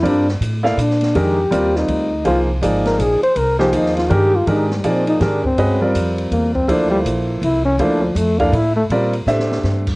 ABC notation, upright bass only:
X:1
M:3/4
L:1/8
Q:"Swing" 1/4=163
K:Gphr
V:1 name="Upright bass" clef=bass
G,,2 =A,,2 B,,2 | F,,2 E,,2 D,,2 | C,,2 A,,,2 B,,, z | C,,2 E,,2 G,,2 |
A,,2 B,,2 A,,2 | G,,2 F,,2 =E,,2 | D,,2 B,,,2 C,,2 | D,,2 F,,2 =A,,2 |
B,,2 =A,,2 G,,2 |]